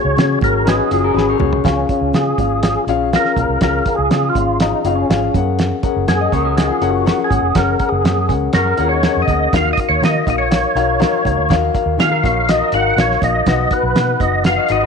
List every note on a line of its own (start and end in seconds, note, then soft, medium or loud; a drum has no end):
0.00 0.39 C#3 medium
0.00 0.12 C#4 medium
0.00 0.13 F#4 medium
0.00 0.13 G#4 medium
0.00 0.39 C#5 loud
0.05 0.14 C#2 loud
0.17 0.36 C#3 loud
0.17 0.37 C#4 medium
0.17 0.37 F#4 medium
0.17 0.38 G#4 loud
0.17 snare loud
0.17 closed hi-hat medium
0.17 muted conga soft
0.17 high conga medium
0.41 0.79 G#1 loud
0.41 0.61 C#4 medium
0.41 0.61 F#4 medium
0.41 0.62 G#4 medium
0.41 0.68 A#4 medium
0.41 kick loud
0.41 closed hi-hat medium
0.41 muted conga soft
0.41 high conga medium
0.41 low conga medium
0.65 0.85 C#4 medium
0.65 0.91 D#4 medium
0.65 0.86 F#4 medium
0.65 0.90 F#4 medium
0.65 1.37 G#4 medium
0.65 0.86 B4 loud
0.65 snare loud
0.65 closed hi-hat loud
0.65 muted conga soft
0.91 1.10 F#1 medium
0.91 1.10 C#4 medium
0.91 1.03 F4 medium
0.91 1.11 F#4 medium
0.91 1.11 G#4 medium
0.91 1.04 G#4 medium
0.91 closed hi-hat medium
0.91 muted conga soft
1.04 1.16 F#4 medium
1.04 1.16 A#4 medium
1.14 1.33 G#1 medium
1.14 1.34 C#4 loud
1.14 1.34 F#4 medium
1.14 1.34 G#4 loud
1.14 1.28 G#4 medium
1.14 1.28 B4 medium
1.14 snare medium
1.29 1.99 A#4 medium
1.29 1.99 C#5 medium
1.39 1.58 C2 medium
1.39 1.59 C#4 medium
1.39 1.59 F#4 medium
1.39 1.59 G#4 loud
1.39 mid tom medium
1.39 muted conga soft
1.39 high conga medium
1.39 low conga medium
1.53 floor tom loud
1.64 1.83 C#2 loud
1.64 2.35 C#3 medium
1.64 1.84 C#4 medium
1.64 2.16 C#4 medium
1.64 1.84 F4 medium
1.64 1.84 G#4 medium
1.64 1.84 F5 loud
1.64 kick loud
1.64 snare loud
1.64 closed hi-hat medium
1.64 muted conga soft
1.64 low conga medium
1.89 2.09 C#4 medium
1.89 2.09 F4 medium
1.89 2.09 G#4 medium
1.89 2.09 F5 medium
1.89 kick medium
1.89 closed hi-hat medium
1.89 muted conga soft
2.01 2.11 C#2 medium
2.13 2.32 C#3 medium
2.13 2.34 C#4 medium
2.13 2.33 F4 medium
2.13 2.34 G#4 medium
2.13 2.85 G#4 loud
2.13 2.34 F5 medium
2.13 snare loud
2.13 closed hi-hat medium
2.13 high conga medium
2.38 2.75 G#1 medium
2.38 2.58 C#4 medium
2.38 2.58 F4 medium
2.38 2.59 G#4 medium
2.38 2.58 F5 medium
2.38 kick medium
2.38 closed hi-hat medium
2.38 muted conga soft
2.38 high conga medium
2.38 low conga medium
2.63 2.83 C#4 medium
2.63 2.83 F4 medium
2.63 2.83 G#4 medium
2.63 2.83 F5 medium
2.63 snare loud
2.63 closed hi-hat loud
2.87 3.15 A#1 medium
2.87 3.08 C#4 loud
2.87 3.08 F4 loud
2.87 3.08 G#4 loud
2.87 3.08 F5 loud
2.87 closed hi-hat medium
2.87 muted conga soft
3.13 3.32 C#4 medium
3.13 3.32 F4 medium
3.13 3.32 G#4 medium
3.13 3.62 A#4 loud
3.13 3.32 F5 loud
3.13 snare loud
3.13 closed hi-hat medium
3.13 muted conga soft
3.25 snare soft
3.36 3.46 B1 medium
3.36 3.57 C#4 medium
3.36 3.56 F4 medium
3.36 3.57 G#4 medium
3.36 3.57 F5 medium
3.36 kick medium
3.36 closed hi-hat medium
3.36 high conga medium
3.36 low conga medium
3.48 3.58 C2 medium
3.61 3.80 C#2 medium
3.61 4.32 C#3 medium
3.61 3.81 C#4 medium
3.61 3.81 F4 medium
3.61 3.82 G#4 medium
3.61 3.96 A#4 medium
3.61 3.81 F5 loud
3.61 kick loud
3.61 snare loud
3.61 closed hi-hat loud
3.61 muted conga soft
3.61 low conga medium
3.86 4.06 C#4 medium
3.86 4.06 F4 medium
3.86 4.06 G#4 medium
3.86 4.06 F5 medium
3.86 kick medium
3.86 closed hi-hat medium
3.95 4.08 C#2 loud
3.95 4.29 G#4 medium
4.10 4.29 C#3 medium
4.10 4.30 C#4 medium
4.10 4.30 F4 medium
4.10 4.30 G#4 medium
4.10 4.30 F5 medium
4.10 snare loud
4.10 closed hi-hat medium
4.10 muted conga soft
4.10 high conga medium
4.30 4.59 F4 medium
4.35 4.72 G#1 medium
4.35 4.55 C#4 medium
4.35 4.55 F4 medium
4.35 4.55 G#4 medium
4.35 4.55 F5 medium
4.35 kick medium
4.35 closed hi-hat medium
4.35 high conga medium
4.35 low conga medium
4.60 4.79 C#4 medium
4.60 4.95 D#4 medium
4.60 4.80 F4 medium
4.60 4.80 G#4 medium
4.60 4.80 F5 medium
4.60 snare loud
4.60 closed hi-hat loud
4.84 5.03 F#1 medium
4.84 5.04 C#4 medium
4.84 5.04 F4 medium
4.84 5.05 G#4 medium
4.84 5.05 F5 loud
4.84 closed hi-hat medium
4.84 muted conga soft
4.96 5.40 C#4 medium
5.09 5.28 G#1 medium
5.09 5.29 C#4 medium
5.09 5.29 F4 medium
5.09 5.29 G#4 medium
5.09 5.29 F5 loud
5.09 snare loud
5.09 closed hi-hat medium
5.34 5.71 F#2 medium
5.34 5.74 C#4 medium
5.34 5.74 G#4 medium
5.34 5.75 A#4 medium
5.34 5.75 F#5 medium
5.34 kick loud
5.34 closed hi-hat medium
5.34 muted conga soft
5.34 high conga medium
5.34 low conga medium
5.59 snare loud
5.59 closed hi-hat loud
5.59 low conga medium
5.83 6.02 C#4 medium
5.83 6.03 G#4 medium
5.83 6.03 A#4 medium
5.83 6.03 F#5 medium
5.83 kick medium
5.83 closed hi-hat medium
5.83 muted conga soft
5.96 6.05 F#1 loud
6.07 6.26 F#2 loud
6.07 6.27 C#4 medium
6.07 6.27 G#4 medium
6.07 6.56 G#4 medium
6.07 6.27 A#4 medium
6.07 6.27 F#5 medium
6.07 snare loud
6.07 closed hi-hat medium
6.07 high conga medium
6.21 6.32 D#5 medium
6.32 6.69 C#2 medium
6.32 6.52 C#4 medium
6.32 6.52 G#4 medium
6.32 6.51 A#4 medium
6.32 6.43 A#4 medium
6.32 6.45 C#5 medium
6.32 6.52 F#5 medium
6.32 kick medium
6.32 closed hi-hat medium
6.32 muted conga soft
6.32 high conga medium
6.32 low conga medium
6.45 6.56 F#4 medium
6.45 6.56 A#4 medium
6.56 6.76 C#4 medium
6.56 6.70 D#4 medium
6.56 6.69 F#4 medium
6.56 6.76 G#4 medium
6.56 6.91 G#4 medium
6.56 6.77 A#4 medium
6.56 6.76 F#5 medium
6.56 snare loud
6.56 closed hi-hat loud
6.69 7.40 F4 medium
6.69 7.40 G#4 medium
6.81 7.09 F#1 medium
6.81 7.01 C#4 loud
6.81 7.01 G#4 medium
6.81 7.01 A#4 medium
6.81 7.01 F#5 loud
6.81 closed hi-hat medium
6.91 7.21 F#4 medium
7.05 7.25 C#4 medium
7.05 7.25 G#4 medium
7.05 7.26 A#4 medium
7.05 7.26 F#5 loud
7.05 snare loud
7.05 closed hi-hat medium
7.05 muted conga soft
7.24 7.58 G#4 medium
7.30 7.40 G#1 medium
7.30 7.50 C#4 medium
7.30 7.50 G#4 medium
7.30 7.50 A#4 medium
7.30 7.50 F#5 medium
7.30 kick medium
7.30 closed hi-hat medium
7.30 high conga medium
7.30 low conga medium
7.42 7.52 F1 medium
7.55 7.74 F#1 loud
7.55 7.75 C#4 loud
7.55 7.75 G#4 medium
7.55 7.75 A#4 medium
7.55 7.90 A#4 medium
7.55 7.75 F#5 loud
7.55 kick loud
7.55 snare loud
7.55 closed hi-hat loud
7.55 low conga medium
7.79 7.99 C#4 medium
7.79 7.99 G#4 medium
7.79 7.99 A#4 medium
7.79 7.99 F#5 medium
7.79 kick medium
7.79 closed hi-hat medium
7.79 muted conga soft
7.89 8.02 F#1 loud
7.89 8.35 G#4 medium
8.04 8.30 F#2 medium
8.04 8.24 C#4 medium
8.04 8.24 G#4 medium
8.04 8.24 A#4 medium
8.04 8.24 F#5 medium
8.04 snare loud
8.04 closed hi-hat medium
8.04 muted conga soft
8.04 high conga medium
8.28 8.48 C#2 medium
8.28 8.48 C#4 medium
8.28 8.48 G#4 medium
8.28 8.49 A#4 medium
8.28 8.49 F#5 medium
8.28 kick medium
8.28 closed hi-hat medium
8.28 muted conga soft
8.28 high conga medium
8.28 low conga medium
8.53 8.73 F#2 loud
8.53 8.73 C#4 medium
8.53 8.73 G#4 medium
8.53 8.73 A#4 medium
8.53 8.65 A#4 medium
8.53 8.88 A#4 medium
8.53 8.66 C#5 medium
8.53 8.73 F#5 medium
8.53 snare loud
8.53 closed hi-hat loud
8.67 8.79 F#4 medium
8.67 8.78 A#4 medium
8.77 9.06 D#2 medium
8.77 8.97 C#4 medium
8.77 8.92 F4 medium
8.77 8.98 G#4 medium
8.77 8.91 G#4 medium
8.77 8.98 A#4 medium
8.77 8.98 F#5 loud
8.77 closed hi-hat medium
8.77 muted conga soft
8.89 9.50 D#4 medium
8.89 9.50 F#4 medium
8.89 9.22 C#5 medium
9.03 9.23 C#4 medium
9.03 9.23 G#4 medium
9.03 9.23 A#4 medium
9.03 9.23 F#5 loud
9.03 snare loud
9.03 closed hi-hat medium
9.03 muted conga soft
9.17 9.26 F2 medium
9.22 9.55 D#5 medium
9.27 9.46 D2 medium
9.27 9.48 C#4 medium
9.27 9.48 G#4 medium
9.27 9.48 A#4 medium
9.27 9.48 F#5 medium
9.27 kick medium
9.27 closed hi-hat medium
9.27 muted conga soft
9.27 high conga medium
9.27 low conga medium
9.53 9.71 D#2 loud
9.53 10.23 D#3 medium
9.53 9.72 D#4 medium
9.53 9.73 F#4 medium
9.53 9.73 A#4 medium
9.53 9.73 F5 loud
9.53 9.71 F5 loud
9.53 kick loud
9.53 snare loud
9.53 closed hi-hat medium
9.53 muted conga soft
9.53 low conga medium
9.73 9.80 D#5 loud
9.77 9.97 D#4 medium
9.77 9.97 F#4 medium
9.77 9.98 A#4 medium
9.77 9.98 F5 medium
9.77 kick medium
9.77 closed hi-hat medium
9.89 9.99 D#2 medium
9.89 10.04 C#5 loud
10.02 10.20 D#3 loud
10.02 10.21 D#4 medium
10.02 10.21 F#4 medium
10.02 10.22 A#4 medium
10.02 10.29 D#5 loud
10.02 10.22 F5 medium
10.02 snare loud
10.02 closed hi-hat medium
10.02 muted conga soft
10.02 high conga medium
10.27 10.64 A#1 medium
10.27 10.46 D#4 medium
10.27 10.46 F#4 medium
10.27 10.46 A#4 medium
10.27 10.36 D#5 medium
10.27 10.46 F5 medium
10.27 kick medium
10.27 closed hi-hat medium
10.27 muted conga soft
10.27 high conga medium
10.27 low conga medium
10.38 11.56 C#5 medium
10.50 10.70 D#4 medium
10.50 10.70 F#4 medium
10.50 10.70 A#4 medium
10.50 10.70 F5 medium
10.50 snare loud
10.50 closed hi-hat loud
10.50 muted conga soft
10.75 11.03 B1 medium
10.75 10.95 D#4 loud
10.75 10.95 F#4 medium
10.75 10.95 A#4 medium
10.75 10.96 F5 loud
10.75 closed hi-hat medium
10.99 11.19 D#4 loud
10.99 11.19 F#4 loud
10.99 11.20 A#4 loud
10.99 11.20 F5 loud
10.99 snare loud
10.99 closed hi-hat medium
10.99 muted conga soft
11.24 11.34 C#2 loud
11.24 11.44 D#4 medium
11.24 11.44 F#4 medium
11.24 11.45 A#4 medium
11.24 11.44 F5 loud
11.24 kick medium
11.24 closed hi-hat medium
11.24 high conga medium
11.24 low conga medium
11.37 11.47 D2 medium
11.49 11.69 D#2 loud
11.49 12.20 D#3 medium
11.49 11.69 D#4 loud
11.49 11.69 F#4 loud
11.49 11.69 A#4 loud
11.49 11.69 F5 loud
11.49 kick loud
11.49 snare loud
11.49 closed hi-hat loud
11.49 muted conga soft
11.49 low conga medium
11.74 11.93 D#4 medium
11.74 11.94 F#4 medium
11.74 11.94 A#4 medium
11.74 11.94 F5 medium
11.74 kick medium
11.74 closed hi-hat medium
11.74 muted conga soft
11.86 11.95 D#2 loud
11.98 12.25 D#3 loud
11.98 12.18 D#4 medium
11.98 12.11 F4 medium
11.98 12.18 F#4 medium
11.98 12.11 G#4 medium
11.98 12.18 A#4 medium
11.98 12.51 F5 medium
11.98 snare loud
11.98 closed hi-hat medium
11.98 muted conga soft
11.98 high conga medium
12.12 12.24 F#4 medium
12.12 12.23 A#4 medium
12.23 12.61 A#1 medium
12.23 12.43 D#4 medium
12.23 12.43 F#4 medium
12.23 12.47 A#4 medium
12.23 12.43 A#4 medium
12.23 12.47 C#5 medium
12.23 12.43 F5 medium
12.23 kick medium
12.23 closed hi-hat medium
12.23 muted conga soft
12.23 high conga medium
12.23 low conga medium
12.49 12.68 D#4 medium
12.49 12.68 F#4 medium
12.49 12.68 A#4 medium
12.49 12.74 D#5 loud
12.49 12.60 D#5 medium
12.49 12.68 F5 medium
12.49 snare loud
12.49 closed hi-hat loud
12.61 13.32 F#4 medium
12.61 13.31 A#4 medium
12.72 12.91 G#1 medium
12.72 12.93 D#4 loud
12.72 12.93 F#4 medium
12.72 12.93 A#4 medium
12.72 12.93 F5 loud
12.72 12.99 F#5 loud
12.72 closed hi-hat medium
12.96 13.15 A#1 medium
12.96 13.17 D#4 medium
12.96 13.17 F#4 medium
12.96 13.17 A#4 medium
12.96 13.24 C#5 loud
12.96 13.17 F5 loud
12.96 snare loud
12.96 closed hi-hat medium
13.11 snare soft
13.21 13.40 A#1 medium
13.21 13.42 D#4 medium
13.21 13.42 F#4 medium
13.21 13.42 A#4 medium
13.21 13.74 D#5 loud
13.21 13.42 F5 medium
13.21 kick medium
13.21 closed hi-hat medium
13.21 high conga medium
13.21 low conga medium
13.46 13.65 B1 loud
13.46 14.17 B2 medium
13.46 13.66 D#4 medium
13.46 13.67 F#4 medium
13.46 13.67 B4 medium
13.46 13.67 F#5 loud
13.46 kick loud
13.46 snare loud
13.46 closed hi-hat medium
13.46 low conga medium
13.71 13.91 D#4 medium
13.71 13.91 F#4 medium
13.71 13.91 B4 medium
13.71 14.23 B4 loud
13.71 13.91 F#5 medium
13.71 kick medium
13.71 closed hi-hat medium
13.83 13.93 B1 loud
13.95 14.14 B2 loud
13.95 14.16 D#4 medium
13.95 14.16 F#4 medium
13.95 14.16 B4 medium
13.95 14.16 F#5 medium
13.95 snare loud
13.95 closed hi-hat medium
13.95 high conga medium
14.20 14.58 F#1 medium
14.20 14.40 D#4 medium
14.20 14.41 F#4 medium
14.20 14.41 B4 medium
14.20 14.44 D#5 medium
14.20 14.41 F#5 medium
14.20 kick medium
14.20 closed hi-hat medium
14.20 muted conga soft
14.20 high conga medium
14.20 low conga medium
14.44 14.65 D#4 medium
14.44 14.65 F#4 medium
14.44 14.65 B4 medium
14.44 14.71 F5 loud
14.44 14.65 F#5 medium
14.44 snare loud
14.44 closed hi-hat loud
14.44 muted conga soft
14.58 14.82 B4 medium
14.58 14.81 D#5 medium
14.69 14.86 G#1 medium
14.69 14.86 D#4 loud
14.69 14.86 F#4 medium
14.69 14.86 B4 medium
14.69 14.86 D#5 medium
14.69 14.86 F#5 loud
14.69 closed hi-hat medium